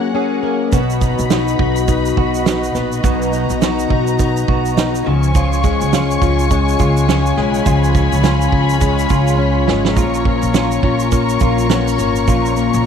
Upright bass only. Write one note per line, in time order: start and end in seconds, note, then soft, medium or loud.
0.73 1.15 B1 loud
1.19 1.56 B1 medium
1.59 2.13 B1 loud
2.17 2.71 B1 loud
2.75 3.02 A#1 medium
3.04 3.47 B1 loud
3.50 3.87 B1 medium
3.90 4.44 B1 loud
4.48 5.02 B1 medium
5.07 5.78 C#2 loud
5.82 6.19 C#2 medium
6.22 6.76 C#2 medium
6.80 7.33 C#2 loud
7.37 7.64 B1 medium
7.66 8.09 C#2 loud
8.12 8.49 C#2 loud
8.53 9.06 C#2 medium
9.10 9.64 C#2 loud
9.68 9.97 G#1 medium
9.97 10.39 A#1 loud
10.43 10.80 A#1 medium
10.83 11.37 A#1 medium
11.41 11.95 A#1 medium
11.99 12.25 G#1 medium
12.28 12.70 A#1 loud
12.74 12.86 A#1 loud